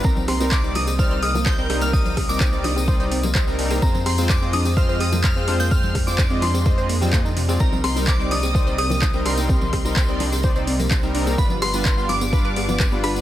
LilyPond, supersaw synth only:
\new Staff \with { instrumentName = "Supersaw synth" } { \time 4/4 \key c \minor \tempo 4 = 127 <g c' ees' bes'>16 r8 <g c' ees' bes'>16 r16 <g c' ees' d''>16 r8 <g c' ees' d''>8 r8. <g c' ees' bes'>16 <g c' ees' bes'>8 | <g c' ees' bes'>16 r8 <g c' ees' bes'>16 r16 <g c' ees' d''>16 r8 <g c' ees' d''>8 r8. <g c' ees' bes'>16 <g c' ees' bes'>8 | <aes c' f' c''>16 r8 <aes c' f' c''>16 r16 <aes c' f' ees''>16 r8 <aes c' f' ees''>8 r8. <aes c' f' c''>16 <aes c' f' c''>8 | <aes c' f' c''>16 r8 <aes c' f' c''>16 r16 <aes c' f' ees''>16 r8 <aes c' f' ees''>8 r16 <aes c' f' c''>16 <aes c' f' ees''>16 r8 <aes c' f' d''>16 |
<g c' ees' bes'>16 r8 <g c' ees' bes'>16 r16 <g c' ees' d''>16 r8 <g c' ees' d''>8 r8. <g c' ees' bes'>16 <g c' ees' bes'>8 | <g c' ees' bes'>16 r8 <g c' ees' bes'>16 r16 <g c' ees' d''>16 r8 <g c' ees' d''>8 r8. <g c' ees' bes'>16 <g c' ees' bes'>8 | <g d' f' b'>16 r8 <g d' f' b'>16 r16 <g d' f' f''>16 r8 <g d' f' f''>8 r8. <g d' f' b'>16 <g d' f' b'>8 | }